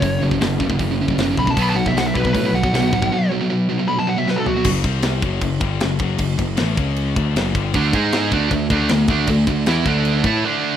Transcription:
<<
  \new Staff \with { instrumentName = "Lead electric guitar" } { \time 4/4 \key fis \minor \tempo 4 = 156 cis''8 r2. b''16 a''16 | b''16 a''16 fis''16 e''16 fis''16 e''16 b'16 b'16 b'8 fis''4.~ | fis''8 r4. b''16 a''16 fis''16 e''16 b'16 a'16 fis'8 | r1 |
r1 | r1 | r1 | }
  \new Staff \with { instrumentName = "Distorted electric guitar" } { \clef bass \time 4/4 \key fis \minor <fis, cis>8 <fis, cis>16 <fis, cis>16 <fis, cis>8 <fis, cis>16 <fis, cis>16 <fis, cis>16 <fis, cis>16 <fis, cis>16 <fis, cis>16 <fis, cis>16 <fis, cis>16 <fis, cis>16 <fis, cis>16 | <b, fis b>8 <b, fis>16 <b, fis>16 <b, fis>8 <b, fis>16 <b, fis>16 <b, fis>16 <b, fis>16 <b, fis>16 <b, fis>16 <b, fis>16 <b, fis>16 <b, fis>16 <b, fis>16 | <b, fis>8 <b, fis>16 <b, fis>16 <b, fis>8 <b, fis>16 <b, fis>16 <b, fis>16 <b, fis>16 <b, fis>16 <b, fis>16 <b, fis>16 <b, fis>16 <b, fis>16 <b, fis>16 | <fis, cis fis>8 <c g c'>4 <fis, cis fis>8 <fis, cis>8 <g, d g>8 <fis, cis>8 <fis, cis fis>8 |
<fis, cis>8 <fis, cis>8 <a, e a>8 <cis gis cis'>4 <d a d'>8 <fis, cis fis>8 <g, d g>8 | <d a d'>8 <gis dis' gis'>4 <d a d'>8 <d a>8 <d a d'>8 <d a>8 <d a d'>8 | <d a>8 <d a>8 <e b e'>8 <d a d'>4 <a e' a'>8 <d a d'>4 | }
  \new Staff \with { instrumentName = "Distorted electric guitar" } { \clef bass \time 4/4 \key fis \minor <fis, cis>8 <fis, cis>16 <fis, cis>16 <fis, cis>8 <fis, cis>16 <fis, cis>16 <fis, cis>16 <fis, cis>16 <fis, cis>16 <fis, cis>16 <fis, cis>16 <fis, cis>16 <fis, cis>16 <fis, cis>16 | <b, fis b>8 <b, fis>16 <b, fis>16 <b, fis>8 <b, fis>16 <b, fis>16 <b, fis>16 <b, fis>16 <b, fis>16 <b, fis>16 <b, fis>16 <b, fis>16 <b, fis>16 <b, fis>16 | <b, fis>8 <b, fis>16 <b, fis>16 <b, fis>8 <b, fis>16 <b, fis>16 <b, fis>16 <b, fis>16 <b, fis>16 <b, fis>16 <b, fis>16 <b, fis>16 <b, fis>16 <b, fis>16 | r1 |
r1 | <d a d'>8 <gis dis' gis'>4 <d a d'>8 <d a>8 <d a d'>8 <d a>8 <d a d'>8 | <d a>8 <d a>8 <e b e'>8 <d a d'>4 <a e' a'>8 <d a d'>4 | }
  \new Staff \with { instrumentName = "Picked electric bass" } { \clef bass \time 4/4 \key fis \minor fis,,8 fis,,8 fis,,8 fis,,8 fis,,4 fis,,8 b,,8 | b,,8 b,,8 b,,8 b,,8 a,8 b,,8 b,,8 gis,,8 | r1 | fis,,8 c,4 fis,,8 fis,,8 g,,8 fis,,8 fis,,8 |
fis,,8 fis,,8 a,,8 cis,4 d,8 fis,,8 g,,8 | d,8 gis,4 d,8 d,8 d,8 d,8 d,8 | d,8 d,8 e,8 d,4 a,8 r4 | }
  \new DrumStaff \with { instrumentName = "Drums" } \drummode { \time 4/4 <hho bd>8. bd16 <hho sn>8 bd16 bd16 <hho bd>8. bd16 <hho sn>8 bd16 bd16 | <hho bd>8. bd16 <hho sn>8 bd16 bd16 <hho bd>8. bd16 <hho sn>8 bd16 bd16 | r4 r4 r4 sn8 tomfh8 | <cymc bd>8 <cymc bd>8 <cymc sn>8 <cymc bd>8 <cymc bd>8 <cymc bd>8 <cymc sn>8 <cymc bd>8 |
<cymc bd>8 <cymc bd>8 <cymc sn>8 <cymc bd>8 cymc8 <cymc bd>8 <cymc sn>8 <cymc bd>8 | <cymc bd>8 <cymc bd>8 <cymc sn>8 <cymc bd>8 <cymc bd>8 <cymc bd>8 <cymc sn>8 <cymc bd>8 | <cymc bd>8 <cymc bd>8 <cymc sn>8 <cymc bd>8 cymc8 <cymc bd>8 r4 | }
>>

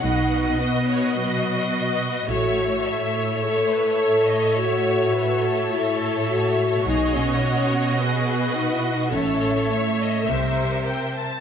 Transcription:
<<
  \new Staff \with { instrumentName = "Violin section" } { \time 4/4 \key a \lydian \tempo 4 = 105 dis''1 | e''1~ | e''1 | dis''1 |
e''2.~ e''8 r8 | }
  \new Staff \with { instrumentName = "Violin section" } { \time 4/4 \key a \lydian fis''4 dis''8 cis''8 dis''2 | cis''4 e''4 cis''8 b'8 cis''8 dis''8 | cis''4 b'8 a'2~ a'8 | gis'4 fis'4 gis'4 fis'4 |
a'4 cis''8 dis''8 e''4 g''8 a''8 | }
  \new Staff \with { instrumentName = "Viola section" } { \time 4/4 \key a \lydian << { b'1 | cis''1~ | cis''1~ | cis''2 b'2 |
cis''2 c''4. r8 | } \\ { fis'1 | a'1~ | a'1 | fis'1 |
a'2 bes'4. r8 | } >> }
  \new Staff \with { instrumentName = "French horn section" } { \time 4/4 \key a \lydian dis'4 b4 fis4. r8 | fis'4. e'8 a'2 | fis'2 e'4 fis'4 | dis'8 cis'4. b4 \tuplet 3/2 { dis'8 e'8 dis'8 } |
cis'4 a4 g4 r4 | }
  \new Staff \with { instrumentName = "Cello section" } { \clef bass \time 4/4 \key a \lydian b,1 | a,1~ | a,1 | b,1 |
a,2 c4. r8 | }
  \new Staff \with { instrumentName = "Double bass section" } { \clef bass \time 4/4 \key a \lydian b,,4 r2. | a,,4 r2. | r1 | b,,4 r2. |
a,,4 r4 c,4 r4 | }
>>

